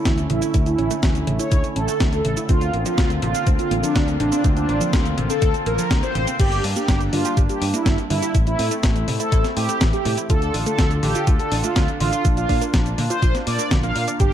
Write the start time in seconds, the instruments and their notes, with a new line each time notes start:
Already playing: analog synth pad D3 A3 C#4 E4, analog polysynth E4
0.05 fingered electric bass D2, synth arpeggio sound E3, kick, snare, closed hi-hat, cabasa
0.18 closed hi-hat, cabasa
0.30 fingered electric bass A1, synth arpeggio sound C#3, analog polysynth E4, closed hi-hat
0.42 synth arpeggio sound E4, closed hi-hat, cabasa
0.54 fingered electric bass D2, synth arpeggio sound E4, kick, closed hi-hat, cabasa
0.66 analog polysynth E4, closed hi-hat, cabasa
0.78 fingered electric bass A1, synth arpeggio sound C#4, closed hi-hat
0.91 synth arpeggio sound A3, closed hi-hat, cabasa
1.03 fingered electric bass D2, synth arpeggio sound E3, kick, snare, closed hi-hat, cabasa
1.15 closed hi-hat, cabasa
1.27 fingered electric bass A1, synth arpeggio sound C#3, closed hi-hat
1.39 synth arpeggio sound E4, analog polysynth C#5, closed hi-hat, cabasa
1.52 fingered electric bass D2, synth arpeggio sound E4, kick, closed hi-hat, cabasa
1.64 closed hi-hat, cabasa
1.76 fingered electric bass A1, synth arpeggio sound C#4, analog polysynth A4, closed hi-hat
1.88 synth arpeggio sound A3, closed hi-hat, cabasa
2.00 fingered electric bass D2, synth arpeggio sound E3, kick, snare, closed hi-hat, cabasa
2.13 analog polysynth A4, closed hi-hat, cabasa
2.25 fingered electric bass A1, synth arpeggio sound C#3, closed hi-hat
2.37 synth arpeggio sound E4, closed hi-hat, cabasa
2.49 fingered electric bass D2, analog synth pad A#3 C4 F4, synth arpeggio sound C4, analog polysynth F4, kick, closed hi-hat, cabasa
2.61 closed hi-hat, cabasa
2.74 fingered electric bass A1, synth arpeggio sound A#3, closed hi-hat
2.86 synth arpeggio sound F3, analog polysynth F4, closed hi-hat, cabasa
2.98 fingered electric bass D2, synth arpeggio sound D3, kick, snare, closed hi-hat, cabasa
3.10 closed hi-hat, cabasa
3.22 fingered electric bass A1, synth arpeggio sound C3, analog polysynth F4, closed hi-hat
3.35 synth arpeggio sound C4, closed hi-hat, cabasa
3.47 fingered electric bass D2, synth arpeggio sound C4, kick, closed hi-hat, cabasa
3.59 analog polysynth F4, closed hi-hat, cabasa
3.71 fingered electric bass A1, synth arpeggio sound A#3, closed hi-hat
3.83 synth arpeggio sound F3, analog polysynth D4, closed hi-hat, cabasa
3.95 fingered electric bass D2, synth arpeggio sound D3, kick, snare, closed hi-hat, cabasa
4.08 closed hi-hat, cabasa
4.20 fingered electric bass A1, synth arpeggio sound C3, analog polysynth D4, closed hi-hat
4.32 synth arpeggio sound C4, closed hi-hat, cabasa
4.44 fingered electric bass D2, synth arpeggio sound C4, kick, closed hi-hat, cabasa
4.57 analog polysynth D4, closed hi-hat, cabasa
4.69 fingered electric bass A1, synth arpeggio sound A#3, closed hi-hat
4.81 synth arpeggio sound F3, closed hi-hat, cabasa
4.93 fingered electric bass D2, synth arpeggio sound D3, kick, snare, closed hi-hat, cabasa
5.06 closed hi-hat, cabasa
5.17 fingered electric bass A1, synth arpeggio sound C3, closed hi-hat
5.30 synth arpeggio sound C4, analog polysynth A4, closed hi-hat, cabasa
5.42 fingered electric bass D2, synth arpeggio sound C4, kick, closed hi-hat, cabasa
5.54 closed hi-hat, cabasa
5.66 fingered electric bass A1, synth arpeggio sound A#3, analog polysynth A#4, closed hi-hat
5.79 synth arpeggio sound F3, closed hi-hat, cabasa
5.91 fingered electric bass D2, synth arpeggio sound D3, kick, snare, closed hi-hat, cabasa
6.03 analog polysynth C5, closed hi-hat, cabasa
6.15 fingered electric bass A1, synth arpeggio sound C3, closed hi-hat
6.27 synth arpeggio sound C4, closed hi-hat, cabasa
6.39 fingered electric bass G1, analog synth pad G3 A#3 D4, analog polysynth G4, synth arpeggio sound G4, kick, closed hi-hat, crash, cabasa
6.52 closed hi-hat, cabasa
6.64 fingered electric bass G2, synth arpeggio sound D4, open hi-hat
6.76 synth arpeggio sound A#3, analog polysynth G4, closed hi-hat, cabasa
6.88 fingered electric bass G1, synth arpeggio sound G3, kick, snare, closed hi-hat, cabasa
7.01 closed hi-hat, cabasa
7.13 fingered electric bass G2, synth arpeggio sound D3, analog polysynth F4, open hi-hat
7.25 synth arpeggio sound G4, closed hi-hat, cabasa
7.37 fingered electric bass G1, synth arpeggio sound G4, kick, closed hi-hat, cabasa
7.49 analog polysynth G4, closed hi-hat, cabasa
7.62 fingered electric bass G2, synth arpeggio sound D4, open hi-hat
7.74 synth arpeggio sound A#3, analog polysynth E4, closed hi-hat, cabasa
7.86 fingered electric bass G1, synth arpeggio sound G3, kick, snare, closed hi-hat, cabasa
7.98 closed hi-hat, cabasa
8.10 fingered electric bass G2, synth arpeggio sound D3, analog polysynth E4, open hi-hat
8.22 synth arpeggio sound G4, closed hi-hat, cabasa
8.35 fingered electric bass A1, analog synth pad A3 C4 E4, synth arpeggio sound E4, kick, closed hi-hat, cabasa
8.47 analog polysynth E4, closed hi-hat, cabasa
8.59 fingered electric bass A2, synth arpeggio sound C4, open hi-hat
8.71 synth arpeggio sound A3, closed hi-hat, cabasa
8.83 fingered electric bass A1, synth arpeggio sound E3, kick, snare, closed hi-hat, cabasa
8.96 closed hi-hat, cabasa
9.08 fingered electric bass A2, synth arpeggio sound C3, open hi-hat
9.20 synth arpeggio sound E4, analog polysynth A4, closed hi-hat, cabasa
9.32 fingered electric bass A1, synth arpeggio sound E4, kick, closed hi-hat, cabasa
9.44 snare, closed hi-hat, cabasa
9.56 fingered electric bass A2, synth arpeggio sound C4, analog polysynth G4, open hi-hat
9.69 synth arpeggio sound A3, closed hi-hat, cabasa
9.81 fingered electric bass A1, synth arpeggio sound E3, kick, snare, closed hi-hat, cabasa
9.93 analog polysynth G4, closed hi-hat, cabasa
10.05 fingered electric bass A2, synth arpeggio sound C3, open hi-hat
10.18 synth arpeggio sound E4, closed hi-hat, cabasa
10.30 fingered electric bass D2, analog synth pad D3 D4 F4 A4, synth arpeggio sound F4, analog polysynth A4, kick, closed hi-hat, cabasa
10.42 closed hi-hat, cabasa
10.54 fingered electric bass A1, synth arpeggio sound D4, open hi-hat
10.66 synth arpeggio sound A3, analog polysynth A4, closed hi-hat, cabasa
10.79 fingered electric bass D2, synth arpeggio sound F3, kick, snare, closed hi-hat, cabasa
10.91 closed hi-hat, cabasa
11.03 fingered electric bass A1, synth arpeggio sound D3, analog polysynth G4, open hi-hat
11.15 synth arpeggio sound F4, closed hi-hat, cabasa
11.27 fingered electric bass D2, synth arpeggio sound F4, kick, closed hi-hat, cabasa
11.39 analog polysynth A4, closed hi-hat, cabasa
11.52 fingered electric bass A1, synth arpeggio sound D4, open hi-hat
11.64 synth arpeggio sound A3, analog polysynth F4, closed hi-hat, cabasa
11.76 fingered electric bass D2, synth arpeggio sound F3, kick, snare, closed hi-hat, cabasa
11.88 closed hi-hat, cabasa
12.00 fingered electric bass A1, synth arpeggio sound D3, analog polysynth F4, open hi-hat
12.13 synth arpeggio sound F4, closed hi-hat, cabasa
12.25 fingered electric bass A#1, analog synth pad A#3, synth arpeggio sound F4, kick, closed hi-hat, cabasa
12.37 analog polysynth F4, closed hi-hat, cabasa
12.49 fingered electric bass A#2, synth arpeggio sound D4, kick, open hi-hat
12.62 synth arpeggio sound A#3, closed hi-hat, cabasa
12.74 fingered electric bass A#1, synth arpeggio sound F3, kick, snare, closed hi-hat, cabasa
12.86 closed hi-hat, cabasa
12.98 fingered electric bass A#2, synth arpeggio sound D3, open hi-hat
13.10 synth arpeggio sound F4, analog polysynth C5, closed hi-hat, cabasa
13.22 fingered electric bass A#1, synth arpeggio sound F4, kick, closed hi-hat, cabasa
13.35 snare, closed hi-hat, cabasa
13.47 fingered electric bass A#2, synth arpeggio sound A#3, analog polysynth D5, open hi-hat
13.59 synth arpeggio sound A#3, closed hi-hat, cabasa
13.71 fingered electric bass A#1, synth arpeggio sound D3, kick, snare, closed hi-hat, cabasa
13.83 synth arpeggio sound A#3, analog polysynth F5, closed hi-hat, cabasa
13.96 fingered electric bass A#2, synth arpeggio sound A#4, open hi-hat
14.08 synth arpeggio sound D5, closed hi-hat, cabasa
14.20 fingered electric bass G1, analog synth pad D4 G4, analog polysynth G4, synth arpeggio sound G4, kick, closed hi-hat, cabasa